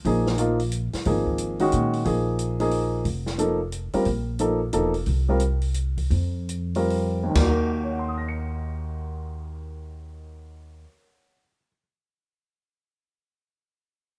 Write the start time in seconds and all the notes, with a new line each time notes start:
0.05 A#1 F3 A#3 D#4 G#4, open hi-hat
0.26 snare
0.38 F3 A#3 D#4 F4, closed hi-hat
0.60 open hi-hat
0.72 closed hi-hat
0.93 muted upright bass stroke, snare, open hi-hat
1.05 G#1 F3 A#3 D#4 G#4, open hi-hat
1.27 kick
1.38 closed hi-hat
1.59 D#3 G#3 C#4 F#4, open hi-hat
1.72 A#2, closed hi-hat
1.93 open hi-hat
2.05 A#1 F3 A#3 D#4 G#4, open hi-hat
2.39 closed hi-hat
2.60 F3 A#3 D#4 G#4, open hi-hat
2.71 open hi-hat
3.05 F1, open hi-hat
3.26 snare
3.38 F3 A#3 D#4 A4, closed hi-hat
3.72 closed hi-hat
3.93 G3 C4 F4 A#4, muted upright bass stroke, open hi-hat
4.05 A#1, open hi-hat
4.39 F3 A#3 D#4 A4, closed hi-hat
4.73 E1 F3 A#3 D#4 A4, closed hi-hat
4.94 open hi-hat
5.06 C2, open hi-hat
5.29 G3 C4 F4 A#4
5.40 closed hi-hat
5.62 open hi-hat
5.74 closed hi-hat
5.97 kick, open hi-hat
6.10 F2, open hi-hat
6.49 closed hi-hat
6.75 G3 C4 F4 A#4, open hi-hat
6.90 open hi-hat
7.23 D#2
7.29 D#3
7.35 D#2 A#3, kick, snare, ride bell
7.42 F#4
7.48 A#4
7.83 C#5
7.91 F#5
7.99 C6
8.08 D#6
8.18 A#6
8.28 C#7